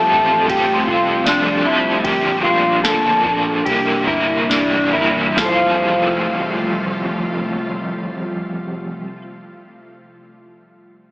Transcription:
Already playing: F3 G3 A3 C4 F4 G4 A4 E5 G5
0.11 A1 C4 F4 A4
0.47 G3 C4 F4 G4 A4 G5, kick, ride
0.73 C6
0.86 C2 C4 F4 A4, kick
1.25 F3 G3 C4 D4 F4 A4, snare, ride, tambourine
1.64 C4 E4 F4 A4
2.04 A#1 A#2 D3 F3 A#3 D4 G4 A#4, kick, ride
2.43 A#3 D4 F4 A#4
2.48 F3
2.84 A#2 D3 F3 A#3 D4 A4, snare, ride, tambourine
2.88 A#4
3.25 A#1 F3 A#3 D4 A#4, kick
3.65 C2 C3 E3 G3 A#3 E4 G4, kick, ride
3.70 A#4
4.07 G1 A#3 E4 A#4, kick
4.49 C3 G3 A#3 D4 E4 A#4, snare, ride, tambourine
4.93 G1 A#3 E4 A#4
5.31 F3
5.36 F1 C3 F3 G3 A3 F4 A4 F5, kick, snare, open hi-hat
5.43 C4 C5
5.48 F4 F5
5.52 A4

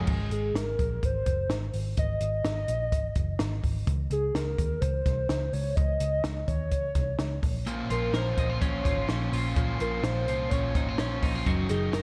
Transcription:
Already playing: F3 G#3 C#4 G#4 A#4
0.07 G#1, kick, crash
0.31 G#1 G#4, closed hi-hat
0.54 G#1 A#4, snare, closed hi-hat
0.79 A#1, kick, closed hi-hat
1.02 G#1 C5, kick, closed hi-hat
1.26 F#1, kick, closed hi-hat
1.49 G#1, snare, closed hi-hat
1.73 G#1, open hi-hat
1.97 G#1 D#5, kick, closed hi-hat
2.21 G#1 D#5, closed hi-hat
2.44 G#1, snare, closed hi-hat
2.68 A#1, closed hi-hat
2.92 G#1, kick, closed hi-hat
3.15 F#1, kick, closed hi-hat
3.39 G#1, snare, closed hi-hat
3.63 G#1, kick, open hi-hat
3.87 C#2, kick, closed hi-hat
4.10 C#2 G#4, closed hi-hat
4.34 C#2 A#4, snare, closed hi-hat
4.58 D#2, kick, closed hi-hat
4.81 C#2 C5, kick, closed hi-hat
5.06 C2, kick, snare, closed hi-hat
5.29 C#2, snare, closed hi-hat
5.53 C#2 C#5, open hi-hat
5.76 C#2 D#5, kick, closed hi-hat
6.00 C#2, closed hi-hat
6.24 C#2, snare, closed hi-hat
6.48 D#2 C#5, kick, closed hi-hat
6.71 C#2 C#5, kick, closed hi-hat
6.95 C2, kick, snare, closed hi-hat
7.19 C#2, snare, closed hi-hat
7.43 A#1, kick, open hi-hat
7.67 A#2 F3 A#3 C#4 F4 C5, closed hi-hat
7.90 A#1 A#3 C#4 F4 A#4 C5, closed hi-hat
8.13 A#1 A#2 F3 A#3 C#4 F4 A#4 C5, snare, closed hi-hat
8.37 A#1 A#3 C#4 D#4 F4 C5, kick, closed hi-hat
8.50 F4
8.60 A#1 A#3 C#4 F4 C5 C#5, kick, closed hi-hat
8.84 G#1 A#3 C#4 F4 C5, kick, snare, closed hi-hat
9.07 A#1 A#2 F3 A#3 C#4 F4 C5, snare, closed hi-hat
9.32 A#1 A#3 C#4 F4 C5, open hi-hat
9.56 A#1 A#2 F3 A#3 C#4 F4 C5, kick, closed hi-hat
9.78 A#1 A#3 C#4 F4 A#4 C5, closed hi-hat
10.02 A#1 A#2 F3 A#3 C#4 F4 C5, snare, closed hi-hat
10.27 C2 A#3 C#4 F4 C5, closed hi-hat
10.50 A#1 A#3 C#4 F4 C5 C#5, kick, closed hi-hat
10.74 G#1 A#3 C#4 D#4 F4 C5, kick, snare, closed hi-hat
10.89 F4
10.98 A#1 A#2 F3 A#3 C#4 F4 C5, snare, closed hi-hat
11.22 A#1 A#3 C#4 D#4 F4 C5, kick, open hi-hat
11.35 F4
11.46 F#1 F#3 C#4 D#4 A#4, kick, closed hi-hat
11.69 F#1 C#4 D#4 G#4 A#4, closed hi-hat
11.92 F#1 F#3 C#4 D#4 A#4, snare, closed hi-hat

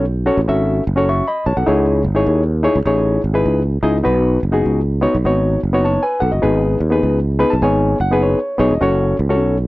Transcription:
Already playing: B1
0.26 C#4 F#4 A4 C#5
0.37 A1
0.48 G#1 C#4 F#4 A4 E5
0.87 F#1
0.96 C#4 F#4 A4 C#5
1.09 E5 C#6
1.28 D#5 B5
1.46 B1 C#5 A5
1.57 B1 A4 F#5
1.66 C#2 D#4 E4 G#4 C#5
2.04 G#1
2.15 D#4 E4 G#4 C#5
2.27 D#2
2.63 D#4 E4 G#4 C#5
2.75 C#2
2.85 A1 D#4 E4 G#4 C#5
3.24 G#1
3.34 D#4 E4 G#4 B4
3.46 C#2
3.83 C#2 D#4 E4 G#4 D#5
4.03 B1 B3 D#4 F#4 B4
4.43 F#1
4.52 B3 D#4 F#4 G#4
4.66 C#2
5.01 B3 D#4 F#4 C#5
5.15 B1
5.25 G#1 B3 D#4 F#4 C#5
5.63 F#1
5.73 B3 D#4 F#4 C#5
5.85 C#5 A5
6.03 B4 G#5
6.20 B1 A4 F#5
6.32 F#1 F#4 D#5
6.42 G#1 B3 D#4 G#4 B4
6.80 D#2
6.90 B3 D#4 G#4 B4
7.03 C#2
7.39 B3 D#4 G#4 B4 B5
7.50 B1 A5
7.62 G#1 B3 D#4 G#4 C#5 G#5
8.00 F#1 F#5
8.11 B3 D#4 G#4 B4
8.23 C#5
8.58 B1 B3 D#4 G#4 C#5 D#5
8.70 E1
8.81 F#1 C#4 F#4 A4 C#5
9.19 C#2
9.29 C#4 F#4 A4 C#5
9.40 B1

